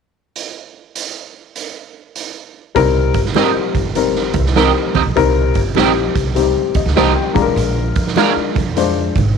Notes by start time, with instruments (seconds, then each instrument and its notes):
0.36 closed hi-hat
0.95 closed hi-hat
1.56 closed hi-hat
2.16 closed hi-hat
2.75 upright bass C2, upright piano G3 C4 D#4 A#4, kick, closed hi-hat
3.14 upright bass G1, kick, closed hi-hat, muted conga
3.26 snare
3.34 upright piano G3 C4 D#4 A#4, clean electric guitar C4 G4 A#4 D#5, snare, closed hi-hat, high conga
3.55 muted upright bass stroke
3.75 upright bass G1, kick, closed hi-hat, low conga
3.95 upright piano G3 C4 D#4 A#4, closed hi-hat, muted conga
4.15 snare
4.33 upright bass C2, kick, closed hi-hat, muted conga, low conga
4.46 snare
4.56 upright piano G3 C4 D#4 A#4, clean electric guitar C4 G4 A#4 D#5, snare, closed hi-hat, high conga
4.95 upright bass D2, clean electric guitar C4 G4 A#4 D#5, kick, closed hi-hat, high conga
5.05 upright bass B1
5.16 upright bass C2, upright piano G3 C4 D#4 A#4, kick, closed hi-hat
5.54 upright bass G1, kick, closed hi-hat, muted conga
5.75 upright bass A#1, upright piano G3 C4 D#4 G4, clean electric guitar C4 G4 A#4 D#5, snare, closed hi-hat, high conga
6.15 upright bass C2, kick, closed hi-hat
6.35 upright piano G3 C4 D#4 G4, closed hi-hat, muted conga
6.74 upright bass D#2, upright piano D#5, kick, closed hi-hat, muted conga
6.86 upright bass D2, snare
6.96 upright bass C2, upright piano G3 C4 D#4 C5 G5, clean electric guitar C4 G4 A#4 D#5, snare, closed hi-hat, high conga
7.16 upright piano G5
7.34 upright bass A#1, upright piano G#3 D4 F4 G#4 A#5, kick, closed hi-hat, high conga
7.42 upright piano A#4
7.46 upright bass A1
7.56 upright bass A#1, closed hi-hat
7.96 upright bass F2, kick, closed hi-hat
8.07 snare
8.16 upright piano G#3 D4 F4 A#4, clean electric guitar D4 G#4 A#4 F5, snare, closed hi-hat, high conga
8.36 muted upright bass stroke
8.55 upright bass F2, kick, closed hi-hat, low conga
8.77 upright piano G#3 D4 F4 C5, closed hi-hat, muted conga
9.15 upright bass G#1, kick, closed hi-hat, muted conga, low conga